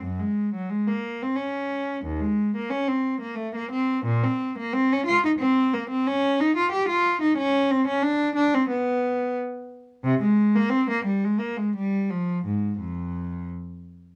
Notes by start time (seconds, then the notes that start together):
0.03 F#2
0.19 G#3
0.54 F#3
0.70 G#3
0.87 A#3
1.22 C4
1.36 C#4
2.05 D#2
2.21 G#3
2.56 A#3
2.70 C#4
2.88 C4
3.21 A#3
3.35 A3
3.55 A#3
3.72 C4
4.05 A#2
4.24 C4
4.58 A#3
4.73 C4
4.93 C#4
5.06 F4
5.25 D#4
5.39 C4
5.73 A#3
5.90 C4
6.07 C#4
6.40 D#4
6.57 F4
6.72 G4
6.88 F4
7.22 D#4
7.38 C#4
7.71 C4
7.87 C#4
8.03 D4
8.35 D4
8.54 C4
8.70 B3
10.04 C3
10.21 G#3
10.55 A#3
10.70 C4
10.90 A#3
11.05 G3
11.24 G#3
11.39 A#3
11.57 G#3
11.76 G3
12.10 F3
12.45 G#2
12.80 F2